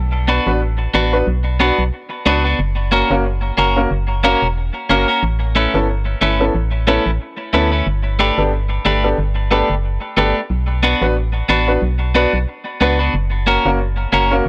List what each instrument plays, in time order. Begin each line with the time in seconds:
Already playing: fm bass B1
0.28 clean electric guitar B3 D4 F#4 B4, grand piano F#4 B4
0.46 fm bass A1, grand piano B3 D4 F#4 B4
0.94 fm bass A1, clean electric guitar B3 D4 F#4 B4, grand piano F#4 B4
1.12 grand piano B3 D4 F#4 B4
1.27 fm bass B1
1.60 clean electric guitar B3 D4 F#4 B4, grand piano B3 D4 F#4 B4
1.79 fm bass B1
2.26 fm bass C#2, grand piano B3 D4 F#4 B4, clean electric guitar B3 D4 F#4 B4
2.44 clean electric guitar B3 D4 F#4 B4
2.59 fm bass F#1
2.92 clean electric guitar A#3 C#4 F#4 A#4, grand piano F#4 A#4
3.10 fm bass F#1, grand piano A#3 C#4 F#4 A#4
3.58 fm bass F#1, clean electric guitar A#3 C#4 F#4 A#4, grand piano F#4 A#4
3.76 grand piano A#3 C#4 F#4 A#4
3.91 fm bass F#1
4.24 clean electric guitar A#3 C#4 F#4 A#4, grand piano A#3 C#4 F#4 A#4
4.42 fm bass E1
4.89 fm bass F#1, grand piano A#3 C#4 F#4 A#4, clean electric guitar A#3 C#4 F#4 A#4
5.08 clean electric guitar A#3 C#4 F#4 A#4
5.23 fm bass A1
5.55 clean electric guitar A3 C#4 E4 B4, grand piano E4 A4
5.74 fm bass G1, grand piano B3 C#4 E4 A4
6.21 fm bass G1, clean electric guitar A3 C#4 E4 B4, grand piano E4 A4
6.40 grand piano B3 C#4 E4 A4
6.55 fm bass A1
6.87 clean electric guitar A3 C#4 E4 B4, grand piano B3 C#4 E4 A4
7.06 fm bass A1
7.53 fm bass D2, clean electric guitar A3 C#4 E4 B4, grand piano B3 C#4 E4 A4
7.72 clean electric guitar A3 C#4 E4 B4
7.87 fm bass G1
8.19 clean electric guitar A3 D4 G4 B4, grand piano G4 A4
8.38 fm bass G1, grand piano B3 D4 G4 A4
8.85 fm bass G1, clean electric guitar A3 D4 G4 B4, grand piano G4 A4
9.04 grand piano B3 D4 G4 A4
9.18 fm bass G1
9.51 clean electric guitar A3 D4 G4 B4, grand piano B3 D4 G4 A4
9.70 fm bass F#1
10.17 fm bass G1, clean electric guitar A3 D4 G4 B4, grand piano B3 D4 G4 A4
10.50 fm bass B1
10.83 clean electric guitar B3 D4 F#4 B4, grand piano F#4 B4
11.01 fm bass A1, grand piano B3 D4 F#4 B4
11.49 fm bass A1, clean electric guitar B3 D4 F#4 B4, grand piano F#4 B4
11.67 grand piano B3 D4 F#4 B4
11.82 fm bass B1
12.15 clean electric guitar B3 D4 F#4 B4, grand piano B3 D4 F#4 B4
12.33 fm bass B1
12.81 fm bass C#2, clean electric guitar B3 D4 F#4 B4, grand piano B3 D4 F#4 B4
12.99 clean electric guitar B3 D4 F#4 B4
13.14 fm bass F#1
13.47 clean electric guitar A#3 C#4 F#4 A#4, grand piano F#4 A#4
13.65 fm bass F#1, grand piano A#3 C#4 F#4 A#4
14.13 fm bass F#1, clean electric guitar A#3 C#4 F#4 A#4, grand piano F#4 A#4
14.31 grand piano A#3 C#4 F#4 A#4